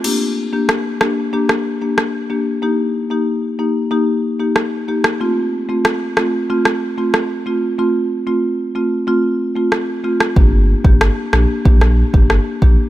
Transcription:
<<
  \new Staff \with { instrumentName = "Marimba" } { \time 4/4 \key g \minor \tempo 4 = 93 <bes d' g'>16 r8 <bes d' g'>8. <bes d' g'>8 <bes d' g'>16 r8 <bes d' g'>8. <bes d' g'>8 | <bes ees' g'>16 r8 <bes ees' g'>16 r8 <bes ees' g'>16 r16 <bes ees' g'>8. <bes ees' g'>16 r8 <bes ees' g'>16 r16 | <a c' f'>16 r8 <a c' f'>8. <a c' f'>8 <a c' f'>16 r8 <a c' f'>8. <a c' f'>8 | <a c' f'>16 r8 <a c' f'>16 r8 <a c' f'>16 r16 <a c' f'>8. <a c' f'>16 r8 <a c' f'>16 r16 |
<bes d' g'>16 r8 <bes d' g'>8. <bes d' g'>8 <bes d' g'>16 r8 <bes d' g'>8. <bes d' g'>8 | }
  \new Staff \with { instrumentName = "Sub bass" } { \clef bass \time 4/4 \key g \minor r1 | r1 | r1 | r1 |
g,,8. g,,8 r16 bes,,16 r16 bes,,8. g,,8 r16 bes,,16 r16 | }
  \new DrumStaff \with { instrumentName = "Drums" } \drummode { \time 4/4 cymc4 ss8 ss8 r16 ss8. ss4 | r4 r4 r4 ss8. ss16 | r4 ss8 ss8 r16 ss8. ss4 | r4 r4 r4 ss8. ss16 |
bd8. bd16 ss8 ss8 bd16 ss8 bd16 ss8 bd8 | }
>>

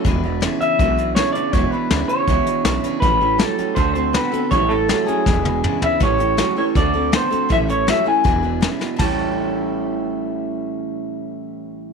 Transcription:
<<
  \new Staff \with { instrumentName = "Clean electric guitar" } { \time 4/4 \key a \mixolydian \tempo 4 = 161 r4. e''4. cis''8 d''8 | cis''8 b'4 cis''2~ cis''8 | b'4 a'4 c''8 c''8 b'4 | cis''8 a'4 gis'2 e''8 |
cis''4. cis''8 d''4 c''4 | e''8 cis''8 e''8 gis''2 r8 | a''1~ | a''1 | }
  \new Staff \with { instrumentName = "Steel-string acoustic guitar" } { \time 4/4 \key a \mixolydian <e gis d' e' b'>8 <d' e' b'>8 <gis d' e' b'>8 <d' e' b'>8 <e gis d' e' b'>8 <d' e' b'>8 <gis d' e' b'>8 <d' e' b'>8 | <e gis d' e' b'>8 <d' e' b'>8 <gis d' e' b'>8 <d' e' b'>8 <e gis d' e' b'>8 <d' e' b'>8 <gis d' e' b'>8 <d' e' b'>8 | <a, e g cis' g' a'>8 <g cis' g' a'>8 <g cis' g' a'>8 <g cis' g' a'>8 <d a c' fis' a'>8 <c' fis' a'>8 <a c' fis' a'>8 <c' fis' a'>8 | <a, e g cis' e' a'>8 <g cis' e' a'>8 <g cis' e' a'>8 <g cis' e' a'>8 <e gis d' e' b'>8 <d' e' b'>8 <gis d' e' b'>8 <d' e' b'>8 |
<a, e g cis' g' a'>8 <g cis' g' a'>8 <g cis' g' a'>8 <g cis' g' a'>8 <d a c' fis' a'>8 <c' fis' a'>8 <a c' fis' a'>8 <c' fis' a'>8 | <a, e g cis' e' a'>8 <g cis' e' a'>8 <g cis' e' a'>8 <g cis' e' a'>8 <e gis d' e' b'>8 <d' e' b'>8 <gis d' e' b'>8 <d' e' b'>8 | <a, e g cis' e' a'>1~ | <a, e g cis' e' a'>1 | }
  \new Staff \with { instrumentName = "Clean electric guitar" } { \clef bass \time 4/4 \key a \mixolydian <e, b,>8 <e, b,>8 <e, cis>8 <e, cis>8 <e, b,>8 <e, b,>8 <e, cis>8 <e, cis>8 | <e, b,>8 <e, b,>8 <e, cis>8 <e, cis>8 <e, b,>8 <e, b,>8 <e, cis>8 <e, cis>8 | <a, e>8 <a, e>8 <a, fis>8 <a, fis>8 <d a>8 <d a>8 <d b>8 <d b>8 | <a, e>8 <a, e>8 <a, fis>8 <a, fis>8 <e, b,>8 <e, b,>8 <e, cis>8 <e, cis>8 |
<a, e>8 <a, e>8 <a, fis>8 <a, e>8 <d a>8 <d a>8 <d b>8 <d a>8 | <a, e>8 <a, e>8 <a, fis>8 <a, e>8 <e, b,>8 <e, b,>8 <e, cis>8 <e, b,>8 | <a, e g cis' g'>1~ | <a, e g cis' g'>1 | }
  \new Staff \with { instrumentName = "Upright bass" } { \clef bass \time 4/4 \key a \mixolydian e,,4. r8 b,,4. r8 | e,,8 r8 d,8 r8 cis,8 r8 b,,8 r8 | a,,4. r8 d,4. r8 | a,,4. r8 e,,4. r8 |
a,,4. r8 d,4. r8 | a,,4. r8 e,,4. r8 | a,,1~ | a,,1 | }
  \new DrumStaff \with { instrumentName = "Drums" } \drummode { \time 4/4 <hh bd>4 <hh sn>8 hh8 <hh bd>8 hh8 <hh sn>8 hh8 | <hh bd>4 <hh sn>8 hh8 <hh bd>8 hh8 <hh sn>8 hh8 | <hh bd>4 <hh sn>8 hh8 <hh bd>8 hh8 <hh sn>8 hh8 | <hh bd>4 <hh sn>8 hh8 <bd sn>8 tommh8 toml8 tomfh8 |
<hh bd>8 hh8 <hh sn>4 <hh bd>4 <hh sn>8 hh8 | <hh bd>8 hh8 <hh sn>4 <hh bd>4 <hh sn>8 sn8 | <cymc bd tomfh>4 r4 r4 r4 | r4 r4 r4 r4 | }
>>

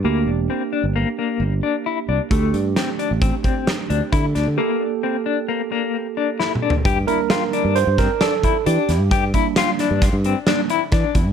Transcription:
<<
  \new Staff \with { instrumentName = "Clean electric guitar" } { \time 5/4 \key g \dorian \tempo 4 = 132 bes4 c'8 d'8 bes8 bes4 d'8 e'8 d'8 | a4 c'8 d'8 c'8 c'4 d'8 e'8 d'8 | bes4 c'8 d'8 bes8 bes4 d'8 e'8 d'8 | g'8 e'8 f'8 d'4 c'8 d'8 e'8 d'4 |
g'8 e'8 f'8 d'4 c'8 d'8 e'8 d'4 | }
  \new Staff \with { instrumentName = "Tine electric piano" } { \time 5/4 \key g \dorian <bes d' g'>1~ <bes d' g'>4 | <a d' g'>1~ <a d' g'>4 | <bes g' a'>1~ <bes g' a'>4 | r8 <g bes d' bes'>4. c''8 bes'8 a'4 g'4 |
r8 <g bes d'>4. r4 <g bes d'>8 r4. | }
  \new Staff \with { instrumentName = "Fingered electric bass" } { \clef bass \time 5/4 \key g \dorian d,8 e,,8 r8. g,,8 r8. g,,8 r4 c,16 r16 | d,8 g,8 r8. a,,8 r4 r16 d,16 r16 d8 d,16 d16 | r1 r4 | g,8 r4 r16 g,8 g,8 r4 r16 e16 r16 e,16 g,16 |
g,8 r4 r16 g,8 g,8 r4 r16 e16 r16 e,16 g,16 | }
  \new DrumStaff \with { instrumentName = "Drums" } \drummode { \time 5/4 r4 r4 r4 r4 r4 | <hh bd>8 hh8 <hh sn>8 hh8 <hh bd>8 <hh bd>8 <hh sn>8 hh8 <hh bd>8 <hh sn>8 | r4 r4 r4 r4 \tuplet 3/2 { sn8 toml8 tomfh8 } | <hh bd>8 hh8 <hh sn>8 hh8 hh8 <hh bd sn>8 <hh sn>8 <hh bd>8 hh8 <hh sn>8 |
<hh bd>8 <hh bd>8 <hh sn>8 <hh sn>8 <hh bd sn>8 hh8 <hh sn>8 hh8 <hh bd sn>8 <hh bd>8 | }
>>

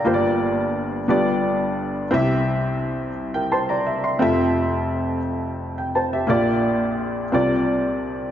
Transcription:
<<
  \new Staff \with { instrumentName = "Upright piano" } { \time 6/8 \key f \major \tempo 4. = 58 << { <d'' bes''>16 r2 r8. | r4. r16 <bes' g''>16 <c'' a'' c'''>16 <d'' bes''>16 e''16 <e'' c'''>16~ | <e'' c'''>16 r2 g''16 <c'' a''>16 <g' e''>16~ | <g' e''>16 r2 r8. | } \\ { <bes f' g' c'' d''>4. <b f' g' d''>4. | <c' e' g' e''>4. r4. | <c' f' a' e''>4. r4. | <bes f' g' d''>4. <c' f' bes' d''>4. | } >> }
  \new Staff \with { instrumentName = "Upright piano" } { \clef bass \time 6/8 \key f \major <g,, g,>4. <g,, g,>4. | <c, c>2. | <f,, f,>2. | <bes,, bes,>4. <c, c>4. | }
>>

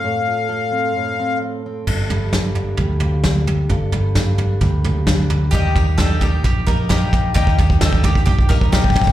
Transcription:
<<
  \new Staff \with { instrumentName = "Accordion" } { \time 4/4 \key g \minor \tempo 4 = 131 f''2. r4 | r1 | r1 | r1 |
r1 | }
  \new Staff \with { instrumentName = "Mandolin" } { \time 4/4 \key g \minor r1 | r1 | r1 | g'4 a'8 g'8 g'8 bes'8 g'4 |
g'4 a'8 g'8 g'8 bes'8 g'4 | }
  \new Staff \with { instrumentName = "Twelve-string acoustic guitar" } { \time 4/4 \key g \minor r1 | r1 | r1 | <ees g bes ees' g'>8 <bes ees' g'>8 <g bes ees' g'>8 <bes ees' g'>4 <bes ees' g'>8 <g bes ees' g'>4 |
<ees g bes ees' g'>8 <bes ees' g'>8 <g bes ees' g'>8 <bes ees' g'>4 <bes ees' g'>8 <g bes ees' g'>4 | }
  \new Staff \with { instrumentName = "Steel-string acoustic guitar" } { \time 4/4 \key g \minor << { a'8 f'8 a'8 c'4 c'8 a'8 c'8 | a'4 bes8 d'4 bes8 d'4 | a'4 bes8 d'4 bes8 d'4 | r1 |
r1 | } \\ { a,2 a,2 | g,8 g4. g4. g8 | g,8 g4. g4. g8 | r1 |
r1 | } >> }
  \new Staff \with { instrumentName = "Picked electric bass" } { \clef bass \time 4/4 \key g \minor r1 | g,,2 d,8 d,4. | g,,2 d,8 d,4. | ees,2 bes,,8 bes,,4. |
ees,2 bes,,8 bes,,4. | }
  \new DrumStaff \with { instrumentName = "Drums" } \drummode { \time 4/4 r4 r4 r4 r4 | <cymc bd tomfh>8 tomfh8 <bd sn tomfh>8 tomfh8 <bd tomfh>8 tomfh8 <bd sn tomfh>8 tomfh8 | <bd tomfh>8 tomfh8 <bd sn tomfh>8 tomfh8 <bd tomfh>8 tomfh8 <bd sn tomfh>8 tomfh8 | <bd tomfh>8 <bd tomfh>8 <bd sn tomfh>8 <bd tomfh>8 <bd tomfh>8 <bd tomfh>8 <bd sn tomfh>8 <bd tomfh>8 |
<bd tomfh>16 bd16 <bd tomfh>16 bd16 <bd sn tomfh>16 bd16 <bd tomfh>16 bd16 <bd tomfh>16 bd16 <bd tomfh>16 bd16 <bd sn tomfh>16 bd32 bd32 <bd tomfh>32 bd32 bd16 | }
>>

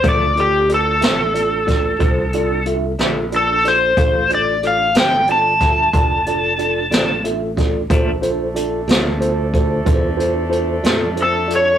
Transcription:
<<
  \new Staff \with { instrumentName = "Electric slide guitar" } { \time 12/8 \key d \minor \tempo 4. = 61 d''8 g'8 a'2. r4 a'8 c''8~ | c''8 d''8 f''8 g''8 a''2. r4 | r1 r4 a'8 cis''8 | }
  \new Staff \with { instrumentName = "Tine electric piano" } { \time 12/8 \key d \minor <d' f' a' d''>8 <d' f' a' d''>8 <d' f' a' d''>8 <d' f' a' e''>8 <d' f' a' d''>8 <d' f' a' d''>8 <d' f' a' c''>8 <d' f' a' d''>8 <d' f' a' e''>8 <d' f' a' e''>8 <d' f' a' d''>8 <d' f' a' d''>8 | <d' f' a' f''>8 <d' f' a' d''>8 <d' f' a' d''>8 <d' f' a' e''>8 <d' f' a' d''>8 <d' f' a' e''>8 <d' f' a' d''>8 <d' f' a' d''>8 <d' f' a' d''>8 <d' f' a' d''>8 <d' f' a' e''>8 <d' f' a' d''>8 | <d' f' a' c''>8 <d' f' a' c''>8 <d' f' a' d''>8 <d' f' a' d''>8 <d' f' a' c''>8 <d' f' a' c''>8 <d' f' a' c''>8 <d' f' a' c''>8 <d' f' a' c''>8 <d' f' a' d''>8 <d' f' a' c''>8 <d' f' a' d''>8 | }
  \new Staff \with { instrumentName = "Horn section" } { \time 12/8 \key d \minor r1. | r1. | <a d' a'>1. | }
  \new Staff \with { instrumentName = "Clean electric guitar" } { \clef bass \time 12/8 \key d \minor <d f a d'>8 r4 <d f a d'>8 r2 r8 <d f a d'>8 r4 | r4. <d f a d'>8 r2 r8 <d f a d'>8 r4 | <bes, f a d'>8 r4 <bes, f a d'>8 r2 r8 <bes, f a d'>8 r4 | }
  \new Staff \with { instrumentName = "Fingered electric bass" } { \clef bass \time 12/8 \key d \minor d,4. a,,4. c,4. bes,,4. | a,,4. g,,4. f,,4. a,,4. | bes,,4. d,4. e,4. f,4. | }
  \new DrumStaff \with { instrumentName = "Drums" } \drummode { \time 12/8 <hh bd>8 hh8 hh8 <hh sn>8 hh8 <hh bd sn>8 <hh bd>8 hh8 hh8 <hh sn>8 hh8 <hh sn>8 | <hh bd>8 hh8 hh8 <hh sn>8 hh8 <hh bd sn>8 <hh bd>8 hh8 hh8 <hh sn>8 hh8 <hh bd sn>8 | <hh bd>8 hh8 hh8 <hh sn>8 hh8 <hh bd>8 <hh bd>8 hh8 hh8 <hh sn>8 hh8 hh8 | }
>>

